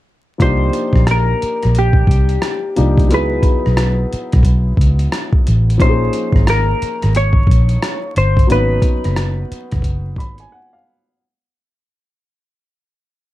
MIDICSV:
0, 0, Header, 1, 6, 480
1, 0, Start_track
1, 0, Tempo, 674157
1, 283, Time_signature, 4, 2, 24, 8
1, 9492, End_track
2, 0, Start_track
2, 0, Title_t, "Clean electric guitar"
2, 0, Program_c, 0, 27
2, 299, Note_on_c, 0, 72, 100
2, 742, Note_off_c, 0, 72, 0
2, 791, Note_on_c, 0, 70, 85
2, 1270, Note_off_c, 0, 70, 0
2, 1272, Note_on_c, 0, 67, 75
2, 2238, Note_on_c, 0, 71, 78
2, 2245, Note_off_c, 0, 67, 0
2, 3632, Note_off_c, 0, 71, 0
2, 4140, Note_on_c, 0, 72, 86
2, 4623, Note_off_c, 0, 72, 0
2, 4626, Note_on_c, 0, 70, 93
2, 5103, Note_off_c, 0, 70, 0
2, 5105, Note_on_c, 0, 73, 101
2, 5819, Note_off_c, 0, 73, 0
2, 5821, Note_on_c, 0, 72, 77
2, 6059, Note_off_c, 0, 72, 0
2, 6066, Note_on_c, 0, 71, 85
2, 7466, Note_off_c, 0, 71, 0
2, 9492, End_track
3, 0, Start_track
3, 0, Title_t, "Upright piano"
3, 0, Program_c, 1, 0
3, 271, Note_on_c, 1, 53, 50
3, 279, Note_on_c, 1, 58, 49
3, 288, Note_on_c, 1, 62, 48
3, 297, Note_on_c, 1, 63, 50
3, 302, Note_on_c, 1, 67, 60
3, 422, Control_c, 1, 64, 127
3, 1928, Note_off_c, 1, 53, 0
3, 1932, Note_off_c, 1, 58, 0
3, 1937, Note_off_c, 1, 62, 0
3, 1941, Note_off_c, 1, 63, 0
3, 1944, Note_off_c, 1, 67, 0
3, 1964, Note_on_c, 1, 53, 52
3, 1967, Note_on_c, 1, 58, 46
3, 1971, Note_on_c, 1, 62, 45
3, 1974, Note_on_c, 1, 63, 47
3, 1979, Note_on_c, 1, 67, 54
3, 2193, Note_on_c, 1, 54, 57
3, 2196, Note_off_c, 1, 63, 0
3, 2200, Note_on_c, 1, 59, 50
3, 2203, Note_off_c, 1, 53, 0
3, 2204, Note_off_c, 1, 58, 0
3, 2207, Note_off_c, 1, 62, 0
3, 2207, Note_on_c, 1, 63, 50
3, 2211, Note_off_c, 1, 67, 0
3, 2212, Control_c, 1, 64, 0
3, 2215, Note_on_c, 1, 64, 51
3, 2225, Note_on_c, 1, 68, 59
3, 2329, Control_c, 1, 64, 127
3, 4089, Note_off_c, 1, 54, 0
3, 4092, Note_off_c, 1, 59, 0
3, 4096, Note_off_c, 1, 63, 0
3, 4100, Note_off_c, 1, 64, 0
3, 4105, Note_off_c, 1, 68, 0
3, 4113, Note_on_c, 1, 53, 59
3, 4122, Note_on_c, 1, 58, 49
3, 4131, Note_on_c, 1, 61, 50
3, 4132, Control_c, 1, 64, 0
3, 4140, Note_on_c, 1, 63, 55
3, 4146, Note_on_c, 1, 67, 46
3, 4193, Note_off_c, 1, 67, 0
3, 4194, Note_on_c, 1, 68, 59
3, 4275, Control_c, 1, 64, 127
3, 6009, Note_off_c, 1, 53, 0
3, 6014, Note_off_c, 1, 58, 0
3, 6018, Note_off_c, 1, 61, 0
3, 6023, Note_off_c, 1, 63, 0
3, 6031, Note_on_c, 1, 54, 55
3, 6039, Note_on_c, 1, 58, 39
3, 6048, Note_on_c, 1, 61, 47
3, 6050, Note_off_c, 1, 68, 0
3, 6051, Control_c, 1, 64, 0
3, 6057, Note_on_c, 1, 63, 50
3, 6065, Note_on_c, 1, 71, 63
3, 6085, Note_on_c, 1, 59, 51
3, 6100, Note_off_c, 1, 58, 0
3, 6155, Control_c, 1, 64, 127
3, 7254, Note_on_c, 1, 83, 64
3, 7390, Note_off_c, 1, 83, 0
3, 7405, Note_on_c, 1, 80, 61
3, 7481, Note_off_c, 1, 80, 0
3, 7492, Note_on_c, 1, 78, 68
3, 7629, Note_off_c, 1, 78, 0
3, 7640, Note_on_c, 1, 77, 55
3, 7928, Note_off_c, 1, 54, 0
3, 7937, Note_off_c, 1, 61, 0
3, 7941, Note_off_c, 1, 63, 0
3, 7942, Note_off_c, 1, 77, 0
3, 7945, Note_off_c, 1, 71, 0
3, 7955, Note_off_c, 1, 59, 0
3, 7972, Control_c, 1, 64, 0
3, 9492, End_track
4, 0, Start_track
4, 0, Title_t, "Fingered electric bass"
4, 0, Program_c, 2, 33
4, 293, Note_on_c, 2, 36, 88
4, 489, Note_off_c, 2, 36, 0
4, 670, Note_on_c, 2, 34, 78
4, 946, Note_off_c, 2, 34, 0
4, 1174, Note_on_c, 2, 34, 72
4, 1440, Note_off_c, 2, 34, 0
4, 1484, Note_on_c, 2, 36, 78
4, 1684, Note_off_c, 2, 36, 0
4, 1982, Note_on_c, 2, 36, 74
4, 2219, Note_off_c, 2, 36, 0
4, 2219, Note_on_c, 2, 37, 95
4, 2413, Note_off_c, 2, 37, 0
4, 2611, Note_on_c, 2, 35, 72
4, 2879, Note_off_c, 2, 35, 0
4, 3094, Note_on_c, 2, 35, 80
4, 3360, Note_off_c, 2, 35, 0
4, 3406, Note_on_c, 2, 37, 80
4, 3606, Note_off_c, 2, 37, 0
4, 3903, Note_on_c, 2, 33, 86
4, 4136, Note_off_c, 2, 33, 0
4, 4136, Note_on_c, 2, 34, 94
4, 4331, Note_off_c, 2, 34, 0
4, 4512, Note_on_c, 2, 32, 79
4, 4787, Note_off_c, 2, 32, 0
4, 5011, Note_on_c, 2, 32, 73
4, 5279, Note_off_c, 2, 32, 0
4, 5327, Note_on_c, 2, 34, 81
4, 5526, Note_off_c, 2, 34, 0
4, 5815, Note_on_c, 2, 31, 82
4, 6011, Note_off_c, 2, 31, 0
4, 6055, Note_on_c, 2, 32, 86
4, 6251, Note_off_c, 2, 32, 0
4, 6447, Note_on_c, 2, 30, 76
4, 6716, Note_off_c, 2, 30, 0
4, 6934, Note_on_c, 2, 30, 77
4, 7245, Note_off_c, 2, 30, 0
4, 7245, Note_on_c, 2, 32, 80
4, 7445, Note_off_c, 2, 32, 0
4, 9492, End_track
5, 0, Start_track
5, 0, Title_t, "Muted fingered electric bass strokes"
5, 1018, Note_on_c, 9, 29, 41
5, 1090, Note_off_c, 9, 29, 0
5, 2943, Note_on_c, 9, 29, 44
5, 3014, Note_off_c, 9, 29, 0
5, 4859, Note_on_c, 9, 29, 42
5, 4930, Note_off_c, 9, 29, 0
5, 6775, Note_on_c, 9, 29, 42
5, 6846, Note_off_c, 9, 29, 0
5, 9492, End_track
6, 0, Start_track
6, 0, Title_t, "Drums"
6, 284, Note_on_c, 9, 36, 104
6, 288, Note_on_c, 9, 42, 65
6, 355, Note_off_c, 9, 36, 0
6, 359, Note_off_c, 9, 42, 0
6, 522, Note_on_c, 9, 42, 61
6, 593, Note_off_c, 9, 42, 0
6, 660, Note_on_c, 9, 36, 85
6, 680, Note_on_c, 9, 37, 27
6, 731, Note_off_c, 9, 36, 0
6, 751, Note_off_c, 9, 37, 0
6, 761, Note_on_c, 9, 37, 111
6, 766, Note_on_c, 9, 42, 74
6, 832, Note_off_c, 9, 37, 0
6, 838, Note_off_c, 9, 42, 0
6, 1013, Note_on_c, 9, 42, 49
6, 1084, Note_off_c, 9, 42, 0
6, 1157, Note_on_c, 9, 42, 30
6, 1162, Note_on_c, 9, 37, 30
6, 1229, Note_off_c, 9, 42, 0
6, 1233, Note_off_c, 9, 37, 0
6, 1244, Note_on_c, 9, 42, 65
6, 1316, Note_off_c, 9, 42, 0
6, 1376, Note_on_c, 9, 36, 83
6, 1447, Note_off_c, 9, 36, 0
6, 1475, Note_on_c, 9, 36, 84
6, 1502, Note_on_c, 9, 42, 58
6, 1547, Note_off_c, 9, 36, 0
6, 1573, Note_off_c, 9, 42, 0
6, 1629, Note_on_c, 9, 42, 31
6, 1701, Note_off_c, 9, 42, 0
6, 1722, Note_on_c, 9, 37, 97
6, 1729, Note_on_c, 9, 42, 66
6, 1793, Note_off_c, 9, 37, 0
6, 1800, Note_off_c, 9, 42, 0
6, 1968, Note_on_c, 9, 42, 63
6, 2039, Note_off_c, 9, 42, 0
6, 2118, Note_on_c, 9, 36, 86
6, 2132, Note_on_c, 9, 42, 31
6, 2189, Note_off_c, 9, 36, 0
6, 2203, Note_off_c, 9, 42, 0
6, 2211, Note_on_c, 9, 42, 69
6, 2282, Note_off_c, 9, 42, 0
6, 2440, Note_on_c, 9, 36, 82
6, 2442, Note_on_c, 9, 42, 58
6, 2511, Note_off_c, 9, 36, 0
6, 2513, Note_off_c, 9, 42, 0
6, 2605, Note_on_c, 9, 37, 27
6, 2676, Note_off_c, 9, 37, 0
6, 2685, Note_on_c, 9, 37, 114
6, 2690, Note_on_c, 9, 42, 78
6, 2756, Note_off_c, 9, 37, 0
6, 2761, Note_off_c, 9, 42, 0
6, 2937, Note_on_c, 9, 42, 49
6, 3008, Note_off_c, 9, 42, 0
6, 3079, Note_on_c, 9, 42, 31
6, 3083, Note_on_c, 9, 37, 31
6, 3085, Note_on_c, 9, 36, 89
6, 3150, Note_off_c, 9, 42, 0
6, 3154, Note_off_c, 9, 36, 0
6, 3154, Note_off_c, 9, 37, 0
6, 3154, Note_on_c, 9, 36, 78
6, 3165, Note_on_c, 9, 42, 69
6, 3225, Note_off_c, 9, 36, 0
6, 3236, Note_off_c, 9, 42, 0
6, 3398, Note_on_c, 9, 36, 79
6, 3426, Note_on_c, 9, 42, 56
6, 3469, Note_off_c, 9, 36, 0
6, 3497, Note_off_c, 9, 42, 0
6, 3554, Note_on_c, 9, 42, 32
6, 3625, Note_off_c, 9, 42, 0
6, 3647, Note_on_c, 9, 37, 91
6, 3655, Note_on_c, 9, 42, 67
6, 3719, Note_off_c, 9, 37, 0
6, 3726, Note_off_c, 9, 42, 0
6, 3792, Note_on_c, 9, 36, 86
6, 3864, Note_off_c, 9, 36, 0
6, 3893, Note_on_c, 9, 42, 67
6, 3964, Note_off_c, 9, 42, 0
6, 4058, Note_on_c, 9, 42, 31
6, 4127, Note_on_c, 9, 36, 101
6, 4130, Note_off_c, 9, 42, 0
6, 4132, Note_on_c, 9, 42, 72
6, 4198, Note_off_c, 9, 36, 0
6, 4203, Note_off_c, 9, 42, 0
6, 4364, Note_on_c, 9, 42, 62
6, 4436, Note_off_c, 9, 42, 0
6, 4503, Note_on_c, 9, 36, 85
6, 4526, Note_on_c, 9, 37, 30
6, 4574, Note_off_c, 9, 36, 0
6, 4598, Note_off_c, 9, 37, 0
6, 4608, Note_on_c, 9, 37, 109
6, 4613, Note_on_c, 9, 42, 76
6, 4679, Note_off_c, 9, 37, 0
6, 4685, Note_off_c, 9, 42, 0
6, 4856, Note_on_c, 9, 42, 53
6, 4927, Note_off_c, 9, 42, 0
6, 5001, Note_on_c, 9, 42, 32
6, 5006, Note_on_c, 9, 37, 32
6, 5072, Note_off_c, 9, 42, 0
6, 5077, Note_off_c, 9, 37, 0
6, 5089, Note_on_c, 9, 42, 70
6, 5160, Note_off_c, 9, 42, 0
6, 5218, Note_on_c, 9, 36, 84
6, 5289, Note_off_c, 9, 36, 0
6, 5319, Note_on_c, 9, 36, 80
6, 5350, Note_on_c, 9, 42, 58
6, 5390, Note_off_c, 9, 36, 0
6, 5421, Note_off_c, 9, 42, 0
6, 5474, Note_on_c, 9, 42, 32
6, 5546, Note_off_c, 9, 42, 0
6, 5571, Note_on_c, 9, 37, 97
6, 5578, Note_on_c, 9, 42, 68
6, 5642, Note_off_c, 9, 37, 0
6, 5650, Note_off_c, 9, 42, 0
6, 5811, Note_on_c, 9, 42, 57
6, 5882, Note_off_c, 9, 42, 0
6, 5958, Note_on_c, 9, 36, 84
6, 5974, Note_on_c, 9, 42, 31
6, 6029, Note_off_c, 9, 36, 0
6, 6045, Note_off_c, 9, 42, 0
6, 6052, Note_on_c, 9, 42, 72
6, 6123, Note_off_c, 9, 42, 0
6, 6280, Note_on_c, 9, 36, 85
6, 6282, Note_on_c, 9, 42, 61
6, 6351, Note_off_c, 9, 36, 0
6, 6353, Note_off_c, 9, 42, 0
6, 6439, Note_on_c, 9, 42, 32
6, 6445, Note_on_c, 9, 37, 28
6, 6510, Note_off_c, 9, 42, 0
6, 6516, Note_off_c, 9, 37, 0
6, 6525, Note_on_c, 9, 37, 115
6, 6530, Note_on_c, 9, 42, 78
6, 6596, Note_off_c, 9, 37, 0
6, 6602, Note_off_c, 9, 42, 0
6, 6776, Note_on_c, 9, 42, 51
6, 6847, Note_off_c, 9, 42, 0
6, 6917, Note_on_c, 9, 42, 31
6, 6921, Note_on_c, 9, 37, 29
6, 6924, Note_on_c, 9, 36, 86
6, 6988, Note_off_c, 9, 42, 0
6, 6992, Note_off_c, 9, 36, 0
6, 6992, Note_on_c, 9, 36, 80
6, 6993, Note_off_c, 9, 37, 0
6, 7006, Note_on_c, 9, 42, 64
6, 7063, Note_off_c, 9, 36, 0
6, 7077, Note_off_c, 9, 42, 0
6, 7237, Note_on_c, 9, 36, 85
6, 7264, Note_on_c, 9, 42, 55
6, 7308, Note_off_c, 9, 36, 0
6, 7335, Note_off_c, 9, 42, 0
6, 7391, Note_on_c, 9, 42, 30
6, 7462, Note_off_c, 9, 42, 0
6, 9492, End_track
0, 0, End_of_file